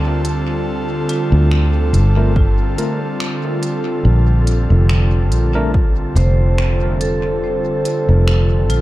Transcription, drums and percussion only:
0.25 closed hi-hat
1.09 closed hi-hat
1.51 finger snap
1.94 closed hi-hat
2.36 kick
2.78 closed hi-hat
3.20 finger snap
3.63 closed hi-hat
4.47 closed hi-hat
4.89 finger snap
5.32 closed hi-hat
5.74 kick
6.16 closed hi-hat
6.58 finger snap
7.01 closed hi-hat
7.85 closed hi-hat
8.28 finger snap
8.70 closed hi-hat

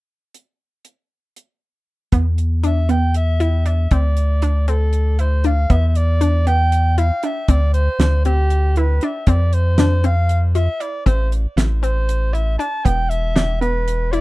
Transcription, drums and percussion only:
0.34 closed hi-hat
0.85 closed hi-hat
1.36 closed hi-hat
2.12 kick, closed hi-hat
2.38 closed hi-hat
2.64 closed hi-hat
2.89 closed hi-hat
3.14 closed hi-hat
3.40 closed hi-hat
3.66 closed hi-hat
3.91 kick, closed hi-hat
4.17 closed hi-hat
4.42 closed hi-hat
4.68 closed hi-hat
4.93 closed hi-hat
5.19 closed hi-hat
5.44 closed hi-hat
5.70 kick, closed hi-hat
5.95 closed hi-hat
6.21 closed hi-hat
6.47 closed hi-hat
6.72 closed hi-hat
6.98 closed hi-hat
7.23 closed hi-hat
7.48 kick, closed hi-hat
7.74 closed hi-hat
8.00 snare, closed hi-hat
8.25 closed hi-hat
8.50 closed hi-hat
8.76 closed hi-hat
9.01 closed hi-hat
9.27 kick, closed hi-hat
9.53 closed hi-hat
9.78 snare, closed hi-hat
10.04 closed hi-hat
10.29 closed hi-hat
10.55 closed hi-hat
10.81 closed hi-hat
11.06 kick, closed hi-hat
11.32 closed hi-hat
11.58 snare, closed hi-hat
11.83 closed hi-hat
12.09 closed hi-hat
12.35 closed hi-hat
12.60 closed hi-hat
12.86 kick, closed hi-hat
13.11 closed hi-hat
13.36 snare, closed hi-hat
13.62 closed hi-hat
13.88 closed hi-hat
14.13 closed hi-hat

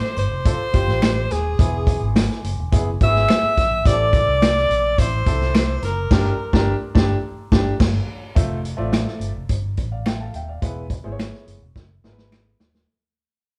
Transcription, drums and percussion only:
0.03 snare
0.17 closed hi-hat
0.45 kick, closed hi-hat
0.73 kick, closed hi-hat
0.88 snare
1.02 finger snap, snare, closed hi-hat
1.31 snare, closed hi-hat
1.59 kick, closed hi-hat
1.87 kick, closed hi-hat
2.16 finger snap, snare, closed hi-hat
2.31 snare
2.44 closed hi-hat
2.72 kick, closed hi-hat
3.01 kick, closed hi-hat
3.15 snare
3.29 finger snap, snare, closed hi-hat
3.58 kick, snare, closed hi-hat
3.85 kick, closed hi-hat
4.13 kick, closed hi-hat
4.42 finger snap, snare, closed hi-hat
4.57 snare
4.71 closed hi-hat
4.98 kick, closed hi-hat
5.26 kick, closed hi-hat
5.41 snare
5.55 finger snap, snare, closed hi-hat
5.82 snare, closed hi-hat
6.11 kick, snare, crash
6.53 kick, snare
6.95 kick, snare
7.52 kick, snare
7.80 kick, snare, crash
8.36 kick, closed hi-hat
8.65 closed hi-hat
8.93 finger snap, snare, closed hi-hat
9.08 snare
9.21 closed hi-hat
9.49 kick, closed hi-hat
9.77 kick, closed hi-hat
10.06 finger snap, snare, closed hi-hat
10.34 closed hi-hat
10.62 kick, closed hi-hat
10.90 kick, closed hi-hat
11.19 finger snap, snare, closed hi-hat
11.34 snare
11.48 closed hi-hat
11.76 kick, snare
12.04 snare
12.18 snare
12.32 finger snap, snare
12.60 snare
12.75 snare

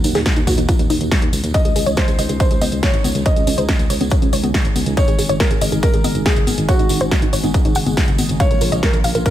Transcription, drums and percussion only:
0.04 open hi-hat, tambourine
0.15 snare, open hi-hat, tambourine
0.26 kick, snare, closed hi-hat, tambourine
0.36 closed hi-hat, tambourine
0.47 kick, open hi-hat, tambourine
0.58 closed hi-hat, tambourine
0.69 kick, closed hi-hat, tambourine
0.79 closed hi-hat, tambourine
0.90 open hi-hat, tambourine
1.01 closed hi-hat, tambourine
1.11 kick, snare, closed hi-hat, tambourine
1.21 closed hi-hat, tambourine
1.33 open hi-hat, tambourine
1.44 closed hi-hat, tambourine
1.54 kick, closed hi-hat, tambourine
1.65 closed hi-hat, tambourine
1.76 open hi-hat, tambourine
1.86 closed hi-hat, tambourine
1.97 kick, snare, closed hi-hat, tambourine
2.08 closed hi-hat, tambourine
2.19 open hi-hat, tambourine
2.29 closed hi-hat, tambourine
2.40 kick, closed hi-hat, tambourine
2.51 closed hi-hat, tambourine
2.61 open hi-hat, tambourine, high conga
2.71 closed hi-hat, tambourine
2.83 kick, snare, closed hi-hat, tambourine
2.94 closed hi-hat, tambourine
3.04 open hi-hat, tambourine, high conga
3.15 closed hi-hat, tambourine
3.26 kick, closed hi-hat, tambourine
3.36 closed hi-hat, tambourine
3.47 open hi-hat, tambourine
3.58 closed hi-hat, tambourine
3.69 kick, snare, closed hi-hat, tambourine
3.79 closed hi-hat, tambourine
3.90 open hi-hat, tambourine
4.01 closed hi-hat, tambourine, high conga
4.10 kick, closed hi-hat, tambourine
4.22 closed hi-hat, tambourine
4.33 open hi-hat, tambourine
4.43 closed hi-hat, tambourine, high conga
4.54 kick, snare, closed hi-hat, tambourine
4.65 closed hi-hat, tambourine
4.76 open hi-hat, tambourine, high conga
4.86 closed hi-hat, tambourine
4.97 kick, closed hi-hat, tambourine
5.08 closed hi-hat, tambourine
5.19 open hi-hat, tambourine
5.29 closed hi-hat, tambourine
5.40 kick, snare, closed hi-hat, tambourine
5.50 closed hi-hat, tambourine
5.61 open hi-hat, tambourine
5.72 closed hi-hat, tambourine
5.83 kick, closed hi-hat, tambourine
5.93 closed hi-hat, tambourine
6.04 open hi-hat, tambourine, high conga
6.15 closed hi-hat, tambourine
6.26 kick, snare, closed hi-hat, tambourine
6.36 closed hi-hat, tambourine
6.47 open hi-hat, tambourine, high conga
6.58 closed hi-hat, tambourine
6.69 kick, closed hi-hat, tambourine
6.79 closed hi-hat, tambourine
6.89 open hi-hat, tambourine
7.01 closed hi-hat, tambourine
7.11 kick, snare, closed hi-hat, tambourine
7.22 closed hi-hat, tambourine
7.33 open hi-hat, tambourine
7.44 closed hi-hat, tambourine, high conga
7.54 kick, closed hi-hat, tambourine
7.65 closed hi-hat, tambourine
7.75 open hi-hat, tambourine
7.86 closed hi-hat, tambourine, high conga
7.97 kick, snare, closed hi-hat, tambourine
8.08 closed hi-hat, tambourine
8.18 open hi-hat, tambourine, high conga
8.29 closed hi-hat, tambourine
8.40 kick, closed hi-hat, tambourine
8.51 closed hi-hat, tambourine
8.61 open hi-hat, tambourine
8.72 closed hi-hat, tambourine
8.83 kick, snare, closed hi-hat, tambourine
8.93 closed hi-hat, tambourine
9.04 open hi-hat, tambourine
9.15 closed hi-hat, tambourine
9.26 kick, closed hi-hat, tambourine

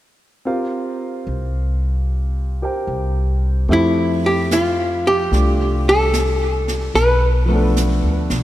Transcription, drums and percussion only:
3.70 brush sweep
4.51 snare, hi-hat pedal
5.32 brush sweep, snare
6.13 snare, hi-hat pedal
6.68 snare
6.96 brush sweep, snare
7.77 snare, hi-hat pedal
8.30 snare

